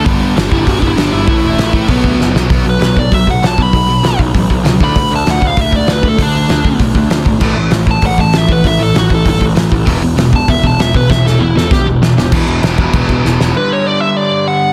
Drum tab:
CC |--------|--------|--------|--------|
HH |o-o-o-o-|o-o-o---|o-o-o-o-|o-o-o-o-|
SD |--o---o-|--o---oo|--o---o-|--o---o-|
BD |o--ooo--|o--ooo--|o--ooo-o|o--ooo-o|

CC |--------|--------|x-------|--------|
HH |o-o-o-o-|o-o-o-o-|--o-o-o-|o-o-o-o-|
SD |--o---o-|--o---o-|--o---o-|--o---o-|
BD |o--ooo-o|o--ooo-o|o--ooo-o|o--ooo-o|

CC |--------|--------|xxxxxx--|--------|
HH |o-o-o-o-|--------|--------|--------|
SD |--o---o-|oo-oo-oo|--o---oo|--------|
BD |o--ooo-o|o---o---|o--ooo--|--------|